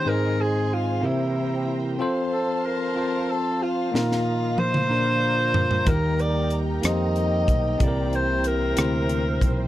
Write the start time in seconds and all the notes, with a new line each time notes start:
Already playing: D#3 C5 D#5
0.05 G#2 G#3 C4 D#4 G#4 A#4 C5 G#5 C6
0.41 G#4
0.74 F4
1.01 C3 E3 A#3 C4 E4 G4 A#4 E5 G5 A#5
1.06 E4
1.99 F3 C4 F4 A4 C5 F5 A5 C6
2.33 A4
2.66 A#4
2.95 C4 F4 C5 A5
3.31 A4
3.63 F4
3.92 A#2 D#3 F3 A#3 D#4 F4 A#4 D#5 F5 A#5, snare
4.12 snare
4.58 C5, high tom
4.74 mid tom
4.88 A#2 D3 A#3 D4 F4 A#4 D5
5.54 floor tom
5.71 floor tom
5.84 D#2 D#3 G3 A#3 D#4 F4 G4 A#4 G5, kick, closed hi-hat
5.89 G4 A#4
6.19 D5, closed hi-hat
6.50 closed hi-hat
6.81 F2 A#3 D#4 G4 C5, cross-stick, closed hi-hat
6.86 D#5
7.16 closed hi-hat
7.48 B1, kick, closed hi-hat
7.78 C2 C3 E3 C4 E4 G4 A4 C5 E5, kick, closed hi-hat
7.83 D5
7.88 A#4
8.13 C5, closed hi-hat
8.44 A#4, closed hi-hat
8.76 D2 C4 E4 G4 C5, cross-stick, closed hi-hat
9.09 closed hi-hat
9.41 B1, kick, closed hi-hat